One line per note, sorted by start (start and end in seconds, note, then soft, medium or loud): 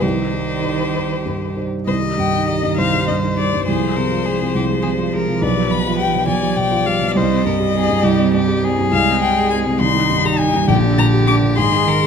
0.01 1.84 C2 soft
0.01 1.68 D#3 medium
0.01 1.67 G4 soft
0.01 1.57 C5 medium
0.33 0.83 G3 soft
0.63 0.92 D#4 soft
0.63 0.92 C5 soft
0.95 1.23 D#4 soft
0.95 1.23 C5 soft
1.26 1.76 G2 soft
1.56 1.85 D#4 soft
1.56 1.85 C5 soft
1.87 2.76 C2 soft
1.87 3.63 D#3 medium
1.87 1.96 C5 soft
1.87 2.79 D#5 medium
2.01 2.27 G3 soft
2.18 2.42 G2 soft
2.18 2.48 G5 medium
2.33 2.57 D#4 soft
2.48 2.72 G3 soft
2.48 2.77 D#5 soft
2.63 2.87 G2 soft
2.77 3.64 C2 soft
2.77 3.67 C5 soft
2.77 3.07 F5 medium
2.93 3.17 G3 soft
3.08 3.32 G2 soft
3.08 3.16 D#5 medium
3.23 3.47 D#4 soft
3.37 3.62 G3 soft
3.37 3.66 D5 medium
3.54 3.68 G2 soft
3.67 4.53 C2 soft
3.67 7.12 F3 medium
3.67 3.98 G#4 soft
3.67 5.10 C5 medium
3.82 4.05 G#3 soft
3.96 4.20 C3 soft
3.96 4.27 A#4 soft
4.11 4.34 F4 soft
4.26 4.49 G#3 soft
4.26 4.55 G#4 soft
4.41 4.64 C3 soft
4.55 5.39 C2 soft
4.55 4.63 G4 soft
4.70 4.93 G#3 soft
4.83 5.07 C3 soft
4.83 4.91 G#4 soft
4.99 5.22 F4 soft
5.13 5.36 G#3 soft
5.13 5.44 A#4 medium
5.28 5.42 C3 soft
5.41 6.26 B1 medium
5.41 6.28 B4 medium
5.41 5.72 D5 medium
5.57 5.79 G3 soft
5.71 5.93 B2 soft
5.71 5.98 B5 medium
5.86 6.08 F4 soft
5.98 6.22 G3 soft
5.98 6.27 G5 medium
6.14 6.37 B2 soft
6.28 7.13 B1 soft
6.28 7.18 D5 medium
6.28 6.58 G#5 medium
6.42 6.66 G3 soft
6.57 6.80 B2 soft
6.57 6.88 G5 medium
6.72 6.95 F4 soft
6.86 7.10 G3 soft
6.86 7.07 F5 medium
7.01 7.16 B2 soft
7.08 7.16 F5 soft
7.15 8.02 C2 medium
7.15 8.89 G3 medium
7.15 7.46 C5 medium
7.15 8.62 D#5 medium
7.31 7.54 C4 soft
7.45 7.69 G2 soft
7.45 7.54 A#4 soft
7.60 7.83 G4 soft
7.75 7.98 C4 soft
7.75 8.05 G#4 medium
7.89 8.13 G2 soft
8.03 8.89 C2 soft
8.03 8.33 G4 medium
8.19 8.42 C4 soft
8.33 8.57 G2 soft
8.33 8.65 G4 medium
8.48 8.72 G4 soft
8.63 8.86 C4 soft
8.63 9.82 G#4 medium
8.77 8.92 G2 soft
8.91 9.77 C2 medium
8.91 9.82 G#3 medium
8.91 9.20 F5 medium
9.07 9.31 C4 soft
9.22 9.45 C3 soft
9.22 9.50 G5 medium
9.36 9.60 G#4 soft
9.50 9.75 C4 soft
9.50 9.58 G#5 medium
9.66 9.80 C3 soft
9.80 10.66 C2 medium
9.80 10.68 D#3 medium
9.80 10.68 D#4 medium
9.80 10.27 C6 medium
9.94 10.18 D#4 soft
10.10 10.33 G2 soft
10.25 10.48 G4 medium
10.25 10.40 A#5 medium
10.39 10.63 D#4 soft
10.39 10.67 G#5 medium
10.54 10.68 G2 soft
10.68 11.54 A#1 medium
10.68 11.59 D3 medium
10.68 11.59 G4 medium
10.68 10.76 G5 medium
10.83 11.07 D4 soft
10.98 11.21 A#2 soft
10.98 11.06 A#5 medium
11.13 11.37 G4 soft
11.27 11.51 D4 soft
11.27 11.35 D6 medium
11.42 11.57 A#2 soft
11.57 12.07 G#2 medium
11.57 12.07 D#3 medium
11.57 11.89 G#4 medium
11.57 12.07 C6 medium
11.72 11.96 D#4 soft
11.86 12.07 D#3 soft
11.86 12.07 A#4 medium
12.01 12.07 G#4 medium